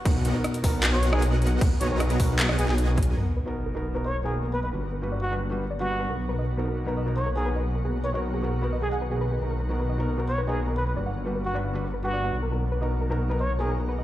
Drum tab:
CC |x---------------x---------------|x---------------x---------------|x-------------------------------|--------------------------------|
HH |x---x---x-x-o---x---x---x---xx--|x---x---x-x-o---x---x---x---xx--|--------------------------------|--------------------------------|
CP |----------------x---------------|----------------x-----x---------|--------------------------------|--------------------------------|
SD |--------r-------------r---------|--------r---------r-------------|--------------------------------|--------------------------------|
BD |o-----------o-------------------|o-----------o---------------o---|--------------------------------|--------------------------------|

CC |--------------------------------|--------------------------------|--------------------------------|--------------------------------|
HH |--------------------------------|--------------------------------|--------------------------------|--------------------------------|
CP |--------------------------------|--------------------------------|--------------------------------|--------------------------------|
SD |--------------------------------|--------------------------------|--------------------------------|--------------------------------|
BD |--------------------------------|--------------------------------|--------------------------------|--------------------------------|

CC |--------------------------------|
HH |--------------------------------|
CP |--------------------------------|
SD |--------------------------------|
BD |--------------------------------|